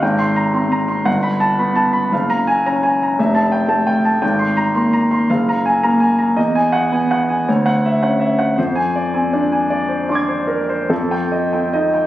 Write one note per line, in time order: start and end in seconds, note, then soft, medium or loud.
0.02 1.04 G#1 medium
0.02 0.30 G5 soft
0.19 0.47 C6 medium
0.36 0.64 A#5 medium
0.54 0.82 C4 soft
0.54 0.82 C6 soft
0.72 1.00 A#5 medium
0.88 1.06 C6 soft
1.05 2.08 G1 medium
1.05 1.34 F#5 medium
1.23 1.51 B5 medium
1.40 1.69 A5 medium
1.59 1.87 B3 soft
1.59 1.87 B5 soft
1.76 2.04 A5 medium
1.93 2.11 B5 medium
2.12 3.15 F#1 medium
2.12 2.41 F5 soft
2.30 2.58 A#5 medium
2.47 2.76 G#5 medium
2.66 2.94 C#4 soft
2.66 2.94 A#5 medium
2.83 3.11 G#5 medium
3.03 3.19 A#5 soft
3.19 4.20 F1 medium
3.19 3.47 E5 medium
3.35 3.63 A5 medium
3.52 3.80 G5 medium
3.68 3.97 A3 soft
3.68 3.97 A5 medium
3.87 4.15 G5 medium
4.05 4.22 A5 soft
4.21 5.25 G#1 medium
4.21 4.50 G5 medium
4.39 4.68 C6 medium
4.57 4.85 A#5 medium
4.75 5.04 A#3 soft
4.75 5.03 C6 soft
4.93 5.21 A#5 medium
5.11 5.29 C6 soft
5.30 6.35 F#1 medium
5.30 5.58 F5 medium
5.49 5.77 A#5 medium
5.66 5.95 G#5 medium
5.83 6.13 A#3 soft
5.83 6.13 A#5 medium
6.00 6.30 G#5 medium
6.19 6.37 A#5 soft
6.36 7.43 E2 medium
6.36 6.66 D#5 medium
6.55 6.84 G#5 medium
6.72 7.02 F#5 medium
6.92 7.21 B3 soft
6.92 7.22 G#5 soft
7.11 7.40 F#5 medium
7.29 7.47 G#5 soft
7.48 8.55 D2 medium
7.48 7.77 C#5 soft
7.66 7.95 F#5 medium
7.85 8.14 E5 medium
8.02 8.32 C#4 soft
8.02 8.32 F#5 medium
8.20 8.49 E5 medium
8.39 8.57 F#5 soft
8.58 10.87 F2 medium
8.58 8.87 C5 medium
8.75 9.05 G#5 medium
8.96 9.25 D5 medium
9.14 9.44 C4 soft
9.14 9.44 G#5 soft
9.33 9.63 D4 soft
9.33 9.63 D5 soft
9.52 9.82 G#5 soft
9.70 10.01 D5 medium
9.88 10.20 C5 soft
10.09 10.41 D4 soft
10.09 10.87 C6 soft
10.09 10.88 D6 soft
10.15 10.90 G#6 soft
10.28 10.61 C5 soft
10.47 10.69 A#4 soft
10.69 10.90 C5 soft
10.89 12.07 F2 medium
10.89 11.24 A4 soft
11.11 11.45 G5 medium
11.32 11.65 D#5 soft
11.53 11.86 C4 soft
11.53 11.86 G5 soft
11.73 12.06 D#4 soft
11.73 12.06 D#5 soft
11.94 12.07 G5 soft